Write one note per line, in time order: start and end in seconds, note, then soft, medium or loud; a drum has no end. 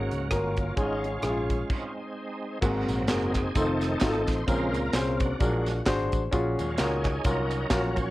0.00 0.53 G#2 medium
0.00 0.19 A#3 medium
0.00 0.31 A#3 medium
0.00 0.19 C#4 medium
0.00 0.31 C#4 medium
0.00 0.19 F#4 medium
0.00 0.28 F#4 medium
0.00 0.19 G#4 medium
0.11 0.28 C#2 medium
0.11 closed hi-hat medium
0.30 0.70 G1 medium
0.30 0.65 A#3 medium
0.30 0.75 A#3 medium
0.30 0.65 C#4 medium
0.30 0.75 C#4 medium
0.30 0.78 F4 medium
0.30 0.66 F#4 medium
0.30 0.66 A#4 medium
0.30 kick medium
0.30 cross-stick loud
0.30 closed hi-hat medium
0.56 kick medium
0.56 cross-stick soft
0.56 closed hi-hat medium
0.76 1.17 G#1 medium
0.76 1.46 G#2 medium
0.76 1.11 G#3 medium
0.76 1.04 G#3 medium
0.76 1.12 C#4 medium
0.76 1.04 C#4 soft
0.76 1.12 F4 medium
0.76 1.06 F4 soft
0.76 1.12 G#4 medium
0.76 kick loud
0.76 closed hi-hat medium
0.80 1.06 D#4 medium
1.04 1.69 G#3 medium
1.04 1.93 C#4 medium
1.04 1.94 F4 medium
1.04 closed hi-hat soft
1.22 1.63 A#1 medium
1.22 1.58 G#3 medium
1.22 1.58 C#4 medium
1.22 1.29 E4 soft
1.22 1.58 G#4 medium
1.22 cross-stick medium
1.22 closed hi-hat medium
1.29 1.61 F4 medium
1.50 kick medium
1.50 closed hi-hat medium
1.70 2.59 G#3 soft
1.70 2.59 C4 soft
1.70 2.59 D#4 medium
1.70 kick loud
1.70 crash medium
2.61 2.85 G#1 medium
2.61 3.31 G#2 medium
2.61 3.32 F#3 medium
2.61 2.97 A#3 medium
2.61 3.32 A#3 soft
2.61 2.97 C4 medium
2.61 3.08 C4 medium
2.61 2.97 F#4 medium
2.61 2.97 G#4 medium
2.61 kick loud
2.61 crash loud
2.61 tambourine medium
2.89 3.09 A#1 medium
2.89 closed hi-hat medium
2.89 tambourine medium
3.08 3.48 F#1 medium
3.08 3.43 A#3 medium
3.08 3.43 C4 medium
3.08 3.52 C4 medium
3.08 3.52 D#4 medium
3.08 3.44 F#4 medium
3.08 3.44 G#4 medium
3.08 3.58 G#4 medium
3.08 snare loud
3.08 clap loud
3.08 closed hi-hat medium
3.08 tambourine loud
3.35 kick medium
3.35 clap medium
3.35 closed hi-hat medium
3.35 tambourine soft
3.54 3.95 F1 medium
3.54 4.23 D#3 medium
3.54 4.23 A3 medium
3.54 3.90 C4 medium
3.54 4.24 C4 medium
3.54 3.90 D#4 medium
3.54 4.44 D#4 medium
3.54 3.90 F4 medium
3.54 3.90 A4 medium
3.54 4.30 A4 medium
3.54 kick loud
3.54 closed hi-hat medium
3.54 tambourine medium
3.81 snare soft
3.81 closed hi-hat medium
3.81 tambourine medium
4.01 4.24 G#1 medium
4.01 4.36 C4 medium
4.01 4.36 D#4 medium
4.01 4.36 F4 medium
4.01 4.08 F#4 medium
4.01 kick medium
4.01 snare loud
4.01 clap medium
4.01 closed hi-hat medium
4.01 tambourine medium
4.08 4.39 A4 medium
4.27 4.45 A1 medium
4.27 4.47 C5 medium
4.27 kick medium
4.27 snare soft
4.27 closed hi-hat medium
4.27 tambourine medium
4.47 4.74 A#1 medium
4.47 5.16 A#2 medium
4.47 4.80 C#3 medium
4.47 4.80 G#3 soft
4.47 5.36 A#3 medium
4.47 4.82 C4 medium
4.47 4.82 C#4 medium
4.47 5.10 F4 medium
4.47 4.82 G#4 medium
4.47 4.95 A#4 medium
4.47 4.83 A#4 medium
4.47 4.80 C5 medium
4.47 kick loud
4.47 closed hi-hat medium
4.47 tambourine medium
4.74 4.91 C#2 medium
4.74 closed hi-hat medium
4.74 tambourine soft
4.93 5.33 C2 medium
4.93 5.28 C4 medium
4.93 5.29 C#4 medium
4.93 5.02 G#4 medium
4.93 5.29 G#4 medium
4.93 5.29 C5 medium
4.93 snare loud
4.93 clap medium
4.93 closed hi-hat medium
4.93 tambourine loud
5.11 5.20 F4 medium
5.20 5.42 D4 medium
5.20 5.82 F#4 medium
5.20 kick medium
5.20 closed hi-hat medium
5.20 tambourine soft
5.40 5.80 A#1 loud
5.40 6.09 A#2 medium
5.40 5.73 F#3 medium
5.40 5.73 G#3 medium
5.40 5.74 D4 medium
5.40 5.75 F#4 medium
5.40 5.75 G#4 medium
5.40 5.75 A#4 medium
5.40 kick loud
5.40 closed hi-hat medium
5.40 tambourine medium
5.66 snare soft
5.66 closed hi-hat medium
5.66 tambourine medium
5.86 6.09 G#1 medium
5.86 6.20 D4 medium
5.86 6.21 F#4 medium
5.86 6.21 G#4 medium
5.86 6.21 C5 loud
5.86 kick medium
5.86 snare loud
5.86 clap medium
5.86 closed hi-hat loud
5.86 tambourine medium
6.12 6.30 A1 medium
6.12 kick medium
6.12 closed hi-hat medium
6.12 tambourine medium
6.31 6.54 A#1 loud
6.31 7.00 A#2 medium
6.31 6.66 C#4 medium
6.31 6.67 F4 medium
6.31 6.67 F#4 medium
6.31 6.67 G#4 loud
6.31 kick loud
6.31 closed hi-hat medium
6.31 tambourine medium
6.58 6.76 D#2 medium
6.58 6.87 F#3 medium
6.58 6.87 G#3 soft
6.58 6.80 C#4 soft
6.58 6.88 F4 medium
6.58 closed hi-hat medium
6.58 tambourine medium
6.77 7.18 C#2 medium
6.77 7.13 C#4 medium
6.77 7.24 C#4 medium
6.77 7.68 D#4 medium
6.77 7.13 F4 medium
6.77 7.13 F#4 medium
6.77 7.13 A#4 medium
6.77 snare loud
6.77 clap loud
6.77 closed hi-hat medium
6.77 tambourine loud
6.82 7.28 G#4 medium
7.05 kick medium
7.05 clap medium
7.05 closed hi-hat medium
7.05 tambourine soft
7.24 7.64 C2 medium
7.24 8.11 F#3 medium
7.24 7.59 C#4 medium
7.24 8.11 C#4 medium
7.24 7.59 F4 medium
7.24 7.59 F#4 medium
7.24 7.60 A#4 medium
7.24 8.00 A#4 medium
7.24 kick loud
7.24 closed hi-hat medium
7.24 tambourine medium
7.51 closed hi-hat medium
7.51 tambourine medium
7.70 8.10 A#1 medium
7.70 8.05 C#4 medium
7.70 8.05 F4 medium
7.70 8.05 F#4 medium
7.70 8.05 A#4 medium
7.70 kick loud
7.70 snare loud
7.70 clap medium
7.70 closed hi-hat loud
7.70 tambourine medium
7.96 8.11 C#5 loud
7.96 kick medium
7.96 closed hi-hat medium
7.96 tambourine medium